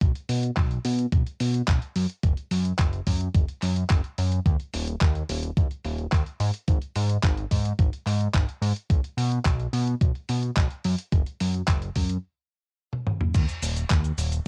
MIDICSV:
0, 0, Header, 1, 3, 480
1, 0, Start_track
1, 0, Tempo, 555556
1, 12, Time_signature, 4, 2, 24, 8
1, 12506, End_track
2, 0, Start_track
2, 0, Title_t, "Analog synth bass"
2, 0, Program_c, 0, 38
2, 10, Note_on_c, 0, 35, 99
2, 105, Note_off_c, 0, 35, 0
2, 251, Note_on_c, 0, 47, 92
2, 438, Note_off_c, 0, 47, 0
2, 490, Note_on_c, 0, 35, 93
2, 678, Note_off_c, 0, 35, 0
2, 733, Note_on_c, 0, 47, 89
2, 919, Note_off_c, 0, 47, 0
2, 971, Note_on_c, 0, 35, 74
2, 1065, Note_off_c, 0, 35, 0
2, 1213, Note_on_c, 0, 47, 89
2, 1400, Note_off_c, 0, 47, 0
2, 1450, Note_on_c, 0, 35, 102
2, 1545, Note_off_c, 0, 35, 0
2, 1691, Note_on_c, 0, 42, 106
2, 1785, Note_off_c, 0, 42, 0
2, 1930, Note_on_c, 0, 30, 95
2, 2025, Note_off_c, 0, 30, 0
2, 2170, Note_on_c, 0, 42, 92
2, 2358, Note_off_c, 0, 42, 0
2, 2412, Note_on_c, 0, 30, 95
2, 2599, Note_off_c, 0, 30, 0
2, 2652, Note_on_c, 0, 42, 89
2, 2839, Note_off_c, 0, 42, 0
2, 2892, Note_on_c, 0, 30, 74
2, 2986, Note_off_c, 0, 30, 0
2, 3134, Note_on_c, 0, 42, 90
2, 3320, Note_off_c, 0, 42, 0
2, 3372, Note_on_c, 0, 30, 94
2, 3466, Note_off_c, 0, 30, 0
2, 3613, Note_on_c, 0, 42, 97
2, 3800, Note_off_c, 0, 42, 0
2, 3851, Note_on_c, 0, 39, 99
2, 3945, Note_off_c, 0, 39, 0
2, 4092, Note_on_c, 0, 27, 92
2, 4279, Note_off_c, 0, 27, 0
2, 4332, Note_on_c, 0, 39, 95
2, 4519, Note_off_c, 0, 39, 0
2, 4572, Note_on_c, 0, 27, 93
2, 4759, Note_off_c, 0, 27, 0
2, 4812, Note_on_c, 0, 39, 74
2, 4906, Note_off_c, 0, 39, 0
2, 5051, Note_on_c, 0, 27, 89
2, 5239, Note_off_c, 0, 27, 0
2, 5290, Note_on_c, 0, 39, 101
2, 5385, Note_off_c, 0, 39, 0
2, 5529, Note_on_c, 0, 44, 104
2, 5624, Note_off_c, 0, 44, 0
2, 5770, Note_on_c, 0, 32, 93
2, 5865, Note_off_c, 0, 32, 0
2, 6011, Note_on_c, 0, 44, 92
2, 6199, Note_off_c, 0, 44, 0
2, 6251, Note_on_c, 0, 32, 96
2, 6439, Note_off_c, 0, 32, 0
2, 6490, Note_on_c, 0, 44, 92
2, 6678, Note_off_c, 0, 44, 0
2, 6730, Note_on_c, 0, 32, 77
2, 6825, Note_off_c, 0, 32, 0
2, 6967, Note_on_c, 0, 44, 85
2, 7157, Note_off_c, 0, 44, 0
2, 7210, Note_on_c, 0, 32, 103
2, 7305, Note_off_c, 0, 32, 0
2, 7445, Note_on_c, 0, 44, 102
2, 7542, Note_off_c, 0, 44, 0
2, 7689, Note_on_c, 0, 35, 100
2, 7784, Note_off_c, 0, 35, 0
2, 7927, Note_on_c, 0, 47, 95
2, 8116, Note_off_c, 0, 47, 0
2, 8170, Note_on_c, 0, 35, 97
2, 8358, Note_off_c, 0, 35, 0
2, 8408, Note_on_c, 0, 47, 92
2, 8597, Note_off_c, 0, 47, 0
2, 8650, Note_on_c, 0, 35, 73
2, 8745, Note_off_c, 0, 35, 0
2, 8893, Note_on_c, 0, 47, 86
2, 9080, Note_off_c, 0, 47, 0
2, 9130, Note_on_c, 0, 35, 100
2, 9225, Note_off_c, 0, 35, 0
2, 9373, Note_on_c, 0, 42, 104
2, 9466, Note_off_c, 0, 42, 0
2, 9609, Note_on_c, 0, 30, 97
2, 9704, Note_off_c, 0, 30, 0
2, 9855, Note_on_c, 0, 42, 88
2, 10040, Note_off_c, 0, 42, 0
2, 10089, Note_on_c, 0, 30, 97
2, 10278, Note_off_c, 0, 30, 0
2, 10330, Note_on_c, 0, 42, 85
2, 10518, Note_off_c, 0, 42, 0
2, 11530, Note_on_c, 0, 39, 96
2, 11625, Note_off_c, 0, 39, 0
2, 11771, Note_on_c, 0, 27, 93
2, 11958, Note_off_c, 0, 27, 0
2, 12010, Note_on_c, 0, 39, 96
2, 12198, Note_off_c, 0, 39, 0
2, 12250, Note_on_c, 0, 27, 93
2, 12438, Note_off_c, 0, 27, 0
2, 12506, End_track
3, 0, Start_track
3, 0, Title_t, "Drums"
3, 10, Note_on_c, 9, 36, 112
3, 10, Note_on_c, 9, 42, 51
3, 97, Note_off_c, 9, 36, 0
3, 97, Note_off_c, 9, 42, 0
3, 132, Note_on_c, 9, 42, 25
3, 218, Note_off_c, 9, 42, 0
3, 250, Note_on_c, 9, 46, 104
3, 336, Note_off_c, 9, 46, 0
3, 371, Note_on_c, 9, 42, 50
3, 457, Note_off_c, 9, 42, 0
3, 488, Note_on_c, 9, 39, 108
3, 490, Note_on_c, 9, 36, 114
3, 490, Note_on_c, 9, 42, 49
3, 574, Note_off_c, 9, 39, 0
3, 577, Note_off_c, 9, 36, 0
3, 577, Note_off_c, 9, 42, 0
3, 611, Note_on_c, 9, 42, 25
3, 697, Note_off_c, 9, 42, 0
3, 730, Note_on_c, 9, 46, 110
3, 817, Note_off_c, 9, 46, 0
3, 852, Note_on_c, 9, 42, 46
3, 938, Note_off_c, 9, 42, 0
3, 970, Note_on_c, 9, 36, 116
3, 970, Note_on_c, 9, 42, 50
3, 1056, Note_off_c, 9, 36, 0
3, 1056, Note_off_c, 9, 42, 0
3, 1093, Note_on_c, 9, 42, 23
3, 1179, Note_off_c, 9, 42, 0
3, 1210, Note_on_c, 9, 46, 101
3, 1296, Note_off_c, 9, 46, 0
3, 1331, Note_on_c, 9, 42, 49
3, 1418, Note_off_c, 9, 42, 0
3, 1447, Note_on_c, 9, 39, 119
3, 1450, Note_on_c, 9, 36, 117
3, 1450, Note_on_c, 9, 42, 49
3, 1534, Note_off_c, 9, 39, 0
3, 1537, Note_off_c, 9, 36, 0
3, 1537, Note_off_c, 9, 42, 0
3, 1571, Note_on_c, 9, 42, 23
3, 1657, Note_off_c, 9, 42, 0
3, 1690, Note_on_c, 9, 46, 98
3, 1777, Note_off_c, 9, 46, 0
3, 1811, Note_on_c, 9, 42, 49
3, 1897, Note_off_c, 9, 42, 0
3, 1929, Note_on_c, 9, 42, 46
3, 1931, Note_on_c, 9, 36, 117
3, 2016, Note_off_c, 9, 42, 0
3, 2017, Note_off_c, 9, 36, 0
3, 2050, Note_on_c, 9, 42, 24
3, 2136, Note_off_c, 9, 42, 0
3, 2170, Note_on_c, 9, 46, 98
3, 2256, Note_off_c, 9, 46, 0
3, 2291, Note_on_c, 9, 42, 49
3, 2377, Note_off_c, 9, 42, 0
3, 2407, Note_on_c, 9, 39, 104
3, 2410, Note_on_c, 9, 42, 49
3, 2411, Note_on_c, 9, 36, 114
3, 2494, Note_off_c, 9, 39, 0
3, 2496, Note_off_c, 9, 42, 0
3, 2497, Note_off_c, 9, 36, 0
3, 2530, Note_on_c, 9, 42, 23
3, 2617, Note_off_c, 9, 42, 0
3, 2650, Note_on_c, 9, 46, 107
3, 2651, Note_on_c, 9, 36, 61
3, 2737, Note_off_c, 9, 46, 0
3, 2738, Note_off_c, 9, 36, 0
3, 2772, Note_on_c, 9, 42, 48
3, 2858, Note_off_c, 9, 42, 0
3, 2891, Note_on_c, 9, 42, 50
3, 2892, Note_on_c, 9, 36, 119
3, 2978, Note_off_c, 9, 36, 0
3, 2978, Note_off_c, 9, 42, 0
3, 3012, Note_on_c, 9, 42, 24
3, 3098, Note_off_c, 9, 42, 0
3, 3128, Note_on_c, 9, 39, 33
3, 3131, Note_on_c, 9, 46, 100
3, 3214, Note_off_c, 9, 39, 0
3, 3217, Note_off_c, 9, 46, 0
3, 3251, Note_on_c, 9, 42, 48
3, 3338, Note_off_c, 9, 42, 0
3, 3368, Note_on_c, 9, 39, 108
3, 3370, Note_on_c, 9, 42, 46
3, 3372, Note_on_c, 9, 36, 119
3, 3454, Note_off_c, 9, 39, 0
3, 3457, Note_off_c, 9, 42, 0
3, 3459, Note_off_c, 9, 36, 0
3, 3491, Note_on_c, 9, 42, 23
3, 3577, Note_off_c, 9, 42, 0
3, 3612, Note_on_c, 9, 46, 98
3, 3698, Note_off_c, 9, 46, 0
3, 3732, Note_on_c, 9, 42, 49
3, 3818, Note_off_c, 9, 42, 0
3, 3852, Note_on_c, 9, 36, 108
3, 3853, Note_on_c, 9, 42, 46
3, 3939, Note_off_c, 9, 36, 0
3, 3939, Note_off_c, 9, 42, 0
3, 3973, Note_on_c, 9, 42, 24
3, 4059, Note_off_c, 9, 42, 0
3, 4093, Note_on_c, 9, 46, 98
3, 4179, Note_off_c, 9, 46, 0
3, 4213, Note_on_c, 9, 42, 49
3, 4299, Note_off_c, 9, 42, 0
3, 4328, Note_on_c, 9, 39, 106
3, 4331, Note_on_c, 9, 42, 47
3, 4332, Note_on_c, 9, 36, 110
3, 4415, Note_off_c, 9, 39, 0
3, 4417, Note_off_c, 9, 42, 0
3, 4418, Note_off_c, 9, 36, 0
3, 4451, Note_on_c, 9, 42, 25
3, 4538, Note_off_c, 9, 42, 0
3, 4572, Note_on_c, 9, 46, 106
3, 4658, Note_off_c, 9, 46, 0
3, 4691, Note_on_c, 9, 42, 48
3, 4777, Note_off_c, 9, 42, 0
3, 4812, Note_on_c, 9, 36, 120
3, 4812, Note_on_c, 9, 42, 50
3, 4898, Note_off_c, 9, 36, 0
3, 4899, Note_off_c, 9, 42, 0
3, 4932, Note_on_c, 9, 42, 23
3, 5019, Note_off_c, 9, 42, 0
3, 5051, Note_on_c, 9, 46, 95
3, 5137, Note_off_c, 9, 46, 0
3, 5170, Note_on_c, 9, 42, 48
3, 5256, Note_off_c, 9, 42, 0
3, 5288, Note_on_c, 9, 39, 110
3, 5291, Note_on_c, 9, 42, 48
3, 5292, Note_on_c, 9, 36, 117
3, 5374, Note_off_c, 9, 39, 0
3, 5377, Note_off_c, 9, 42, 0
3, 5378, Note_off_c, 9, 36, 0
3, 5411, Note_on_c, 9, 42, 23
3, 5498, Note_off_c, 9, 42, 0
3, 5530, Note_on_c, 9, 46, 98
3, 5616, Note_off_c, 9, 46, 0
3, 5648, Note_on_c, 9, 42, 49
3, 5735, Note_off_c, 9, 42, 0
3, 5769, Note_on_c, 9, 42, 51
3, 5772, Note_on_c, 9, 36, 105
3, 5856, Note_off_c, 9, 42, 0
3, 5858, Note_off_c, 9, 36, 0
3, 5890, Note_on_c, 9, 42, 25
3, 5976, Note_off_c, 9, 42, 0
3, 6010, Note_on_c, 9, 46, 97
3, 6097, Note_off_c, 9, 46, 0
3, 6131, Note_on_c, 9, 42, 52
3, 6217, Note_off_c, 9, 42, 0
3, 6249, Note_on_c, 9, 39, 105
3, 6251, Note_on_c, 9, 36, 109
3, 6252, Note_on_c, 9, 42, 51
3, 6335, Note_off_c, 9, 39, 0
3, 6338, Note_off_c, 9, 36, 0
3, 6338, Note_off_c, 9, 42, 0
3, 6371, Note_on_c, 9, 42, 26
3, 6458, Note_off_c, 9, 42, 0
3, 6491, Note_on_c, 9, 36, 57
3, 6491, Note_on_c, 9, 46, 101
3, 6577, Note_off_c, 9, 36, 0
3, 6578, Note_off_c, 9, 46, 0
3, 6613, Note_on_c, 9, 42, 48
3, 6699, Note_off_c, 9, 42, 0
3, 6730, Note_on_c, 9, 36, 110
3, 6732, Note_on_c, 9, 42, 52
3, 6817, Note_off_c, 9, 36, 0
3, 6818, Note_off_c, 9, 42, 0
3, 6853, Note_on_c, 9, 42, 26
3, 6939, Note_off_c, 9, 42, 0
3, 6971, Note_on_c, 9, 39, 33
3, 6974, Note_on_c, 9, 46, 97
3, 7057, Note_off_c, 9, 39, 0
3, 7060, Note_off_c, 9, 46, 0
3, 7092, Note_on_c, 9, 42, 52
3, 7178, Note_off_c, 9, 42, 0
3, 7209, Note_on_c, 9, 39, 109
3, 7211, Note_on_c, 9, 36, 114
3, 7212, Note_on_c, 9, 42, 52
3, 7296, Note_off_c, 9, 39, 0
3, 7297, Note_off_c, 9, 36, 0
3, 7298, Note_off_c, 9, 42, 0
3, 7334, Note_on_c, 9, 42, 24
3, 7421, Note_off_c, 9, 42, 0
3, 7452, Note_on_c, 9, 46, 94
3, 7538, Note_off_c, 9, 46, 0
3, 7572, Note_on_c, 9, 42, 49
3, 7659, Note_off_c, 9, 42, 0
3, 7690, Note_on_c, 9, 36, 107
3, 7692, Note_on_c, 9, 42, 52
3, 7777, Note_off_c, 9, 36, 0
3, 7778, Note_off_c, 9, 42, 0
3, 7812, Note_on_c, 9, 42, 26
3, 7899, Note_off_c, 9, 42, 0
3, 7931, Note_on_c, 9, 46, 98
3, 8017, Note_off_c, 9, 46, 0
3, 8050, Note_on_c, 9, 42, 55
3, 8137, Note_off_c, 9, 42, 0
3, 8168, Note_on_c, 9, 39, 112
3, 8170, Note_on_c, 9, 36, 113
3, 8170, Note_on_c, 9, 42, 52
3, 8254, Note_off_c, 9, 39, 0
3, 8256, Note_off_c, 9, 36, 0
3, 8257, Note_off_c, 9, 42, 0
3, 8291, Note_on_c, 9, 42, 27
3, 8378, Note_off_c, 9, 42, 0
3, 8409, Note_on_c, 9, 46, 102
3, 8495, Note_off_c, 9, 46, 0
3, 8530, Note_on_c, 9, 42, 51
3, 8617, Note_off_c, 9, 42, 0
3, 8649, Note_on_c, 9, 36, 111
3, 8651, Note_on_c, 9, 42, 55
3, 8736, Note_off_c, 9, 36, 0
3, 8737, Note_off_c, 9, 42, 0
3, 8770, Note_on_c, 9, 42, 25
3, 8857, Note_off_c, 9, 42, 0
3, 8888, Note_on_c, 9, 46, 96
3, 8975, Note_off_c, 9, 46, 0
3, 9009, Note_on_c, 9, 42, 53
3, 9095, Note_off_c, 9, 42, 0
3, 9127, Note_on_c, 9, 39, 111
3, 9130, Note_on_c, 9, 36, 106
3, 9130, Note_on_c, 9, 42, 53
3, 9214, Note_off_c, 9, 39, 0
3, 9216, Note_off_c, 9, 36, 0
3, 9216, Note_off_c, 9, 42, 0
3, 9250, Note_on_c, 9, 42, 25
3, 9336, Note_off_c, 9, 42, 0
3, 9369, Note_on_c, 9, 46, 94
3, 9455, Note_off_c, 9, 46, 0
3, 9490, Note_on_c, 9, 42, 53
3, 9576, Note_off_c, 9, 42, 0
3, 9610, Note_on_c, 9, 36, 108
3, 9611, Note_on_c, 9, 42, 55
3, 9696, Note_off_c, 9, 36, 0
3, 9697, Note_off_c, 9, 42, 0
3, 9731, Note_on_c, 9, 42, 26
3, 9817, Note_off_c, 9, 42, 0
3, 9851, Note_on_c, 9, 46, 101
3, 9938, Note_off_c, 9, 46, 0
3, 9971, Note_on_c, 9, 42, 53
3, 10057, Note_off_c, 9, 42, 0
3, 10087, Note_on_c, 9, 39, 121
3, 10090, Note_on_c, 9, 36, 108
3, 10090, Note_on_c, 9, 42, 52
3, 10174, Note_off_c, 9, 39, 0
3, 10176, Note_off_c, 9, 36, 0
3, 10176, Note_off_c, 9, 42, 0
3, 10211, Note_on_c, 9, 42, 28
3, 10297, Note_off_c, 9, 42, 0
3, 10328, Note_on_c, 9, 46, 99
3, 10330, Note_on_c, 9, 36, 61
3, 10415, Note_off_c, 9, 46, 0
3, 10416, Note_off_c, 9, 36, 0
3, 10449, Note_on_c, 9, 42, 52
3, 10535, Note_off_c, 9, 42, 0
3, 11170, Note_on_c, 9, 48, 49
3, 11256, Note_off_c, 9, 48, 0
3, 11290, Note_on_c, 9, 47, 74
3, 11377, Note_off_c, 9, 47, 0
3, 11411, Note_on_c, 9, 45, 77
3, 11497, Note_off_c, 9, 45, 0
3, 11529, Note_on_c, 9, 42, 56
3, 11529, Note_on_c, 9, 49, 101
3, 11529, Note_on_c, 9, 82, 43
3, 11531, Note_on_c, 9, 36, 112
3, 11616, Note_off_c, 9, 42, 0
3, 11616, Note_off_c, 9, 49, 0
3, 11616, Note_off_c, 9, 82, 0
3, 11617, Note_off_c, 9, 36, 0
3, 11651, Note_on_c, 9, 42, 28
3, 11651, Note_on_c, 9, 82, 29
3, 11737, Note_off_c, 9, 42, 0
3, 11737, Note_off_c, 9, 82, 0
3, 11770, Note_on_c, 9, 46, 104
3, 11770, Note_on_c, 9, 82, 79
3, 11857, Note_off_c, 9, 46, 0
3, 11857, Note_off_c, 9, 82, 0
3, 11891, Note_on_c, 9, 42, 57
3, 11891, Note_on_c, 9, 82, 35
3, 11978, Note_off_c, 9, 42, 0
3, 11978, Note_off_c, 9, 82, 0
3, 12008, Note_on_c, 9, 39, 124
3, 12011, Note_on_c, 9, 42, 54
3, 12011, Note_on_c, 9, 82, 44
3, 12012, Note_on_c, 9, 36, 105
3, 12095, Note_off_c, 9, 39, 0
3, 12097, Note_off_c, 9, 42, 0
3, 12098, Note_off_c, 9, 36, 0
3, 12098, Note_off_c, 9, 82, 0
3, 12131, Note_on_c, 9, 42, 26
3, 12131, Note_on_c, 9, 82, 31
3, 12217, Note_off_c, 9, 42, 0
3, 12218, Note_off_c, 9, 82, 0
3, 12250, Note_on_c, 9, 46, 102
3, 12250, Note_on_c, 9, 82, 80
3, 12336, Note_off_c, 9, 46, 0
3, 12336, Note_off_c, 9, 82, 0
3, 12372, Note_on_c, 9, 42, 57
3, 12372, Note_on_c, 9, 82, 33
3, 12458, Note_off_c, 9, 42, 0
3, 12458, Note_off_c, 9, 82, 0
3, 12506, End_track
0, 0, End_of_file